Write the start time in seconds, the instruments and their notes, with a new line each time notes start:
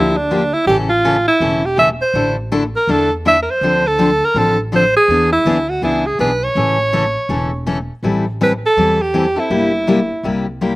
Already playing: upright bass D2, steel-string acoustic guitar D3 F3 A#3 D4 G4, alto saxophone E4
0.17 alto saxophone D4
0.31 steel-string acoustic guitar D3 F3 A#3 D4 G4
0.53 alto saxophone E4
0.66 upright bass A1, steel-string acoustic guitar C#3 E3 A3 C#4 A4, alto saxophone G4
0.89 alto saxophone F4
1.05 steel-string acoustic guitar C#3 E3 A3 C#4 A4
1.28 alto saxophone E4
1.40 upright bass E1, steel-string acoustic guitar C#3 E3 A3 C#4 A4
1.66 alto saxophone G4
1.77 steel-string acoustic guitar C#3 E3 A3 C#4 A4, alto saxophone E5
2.02 alto saxophone C5
2.14 upright bass A1, steel-string acoustic guitar D3 A3 D4 E4 A4
2.52 steel-string acoustic guitar D3 A3 D4 E4 A4
2.76 alto saxophone A#4
2.87 upright bass E2, steel-string acoustic guitar D3 A3 D4 E4 A4, alto saxophone A4
3.25 steel-string acoustic guitar D3 A3 D4 E4 A4, alto saxophone E5
3.42 alto saxophone A#4
3.51 alto saxophone C5
3.61 upright bass D2, steel-string acoustic guitar D3 F3 C4 D4 A4
3.87 alto saxophone A4
3.98 steel-string acoustic guitar D3 F3 C4 D4 A4
4.25 alto saxophone A#4
4.34 upright bass A1, steel-string acoustic guitar D3 F3 C4 D4 A4, alto saxophone A4
4.72 steel-string acoustic guitar D3 F3 C4 D4 A4, alto saxophone C5
4.97 alto saxophone G#4
5.08 upright bass E2, steel-string acoustic guitar E3 B3 D4 G#4
5.32 alto saxophone E4
5.45 upright bass D2, steel-string acoustic guitar E3 B3 D4 G#4
5.70 alto saxophone F#4
5.82 upright bass C#2, steel-string acoustic guitar E3 B3 D4 G#4, alto saxophone E4
6.06 alto saxophone G#4
6.19 upright bass B1, steel-string acoustic guitar E3 B3 D4 G#4, alto saxophone B4
6.44 alto saxophone C#5
6.55 upright bass A1, steel-string acoustic guitar C#3 E3 A3 C#4 A4
6.93 steel-string acoustic guitar C#3 E3 A3 C#4 A4
7.29 upright bass E1, steel-string acoustic guitar C#3 E3 A3 C#4 A4
7.66 steel-string acoustic guitar C#3 E3 A3 C#4 A4
8.03 upright bass A1, steel-string acoustic guitar E3 G3 C4 E4 A4
8.41 steel-string acoustic guitar E3 G3 C4 E4 A4, alto saxophone B4
8.66 alto saxophone A4
8.77 upright bass E2, steel-string acoustic guitar E3 G3 C4 E4 A4
9.02 alto saxophone G4
9.14 steel-string acoustic guitar E3 G3 C4 E4 A4
9.36 steel-string acoustic guitar C4 E4 A4, alto saxophone E4
9.50 upright bass G1, steel-string acoustic guitar C3 G3 A#3 E4 G4
9.87 steel-string acoustic guitar C3 G3 A#3 E4 G4
10.23 upright bass C2, steel-string acoustic guitar C3 G3 A#3 E4 G4
10.61 steel-string acoustic guitar C3 G3 A#3 E4 G4